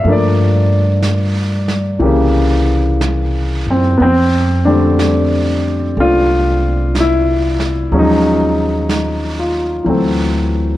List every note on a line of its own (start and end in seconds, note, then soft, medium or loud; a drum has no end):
0.00 2.00 F3 soft
0.00 0.10 C4 medium
0.04 1.96 G2 medium
0.04 2.00 A3 soft
0.04 2.00 A#3 soft
0.04 brush sweep soft
0.08 2.02 D4 medium
0.08 2.00 D5 medium
1.02 brush sweep soft
1.02 snare soft
1.02 hi-hat pedal soft
1.68 snare soft
1.99 3.63 C2 medium
1.99 4.00 E3 medium
1.99 4.01 A#3 soft
1.99 4.01 G4 soft
1.99 brush sweep soft
2.04 4.02 C#3 medium
3.01 brush sweep soft
3.01 snare soft
3.01 hi-hat pedal soft
3.67 3.98 F#2 medium
3.67 3.99 C4 medium
3.98 5.93 F2 medium
3.98 4.02 B3 medium
3.98 brush sweep soft
4.02 4.65 C4 medium
4.65 7.92 D3 soft
4.65 7.92 G3 soft
4.65 5.96 A3 soft
4.65 5.97 C4 soft
4.65 5.59 D4 medium
4.99 brush sweep soft
4.99 snare soft
4.99 hi-hat pedal soft
5.97 7.88 C2 medium
5.97 7.92 A3 soft
5.97 7.92 C4 soft
5.97 7.93 D4 soft
5.97 6.92 F4 medium
5.97 brush sweep soft
6.95 brush sweep soft
6.95 snare soft
6.95 hi-hat pedal soft
7.00 7.97 E4 medium
7.60 snare soft
7.92 9.81 D#2 medium
7.92 9.85 F3 medium
7.92 9.85 F#3 soft
7.92 9.86 G#3 soft
7.92 9.86 C#4 medium
7.92 brush sweep soft
7.99 8.87 D#4 medium
8.89 9.65 D#4 soft
8.89 brush sweep soft
8.89 snare soft
8.89 hi-hat pedal soft
9.39 10.06 F4 soft
9.84 10.77 D2 medium
9.84 10.77 E3 soft
9.84 10.77 F#3 soft
9.84 10.77 A3 soft
9.84 brush sweep soft
9.89 10.77 C4 soft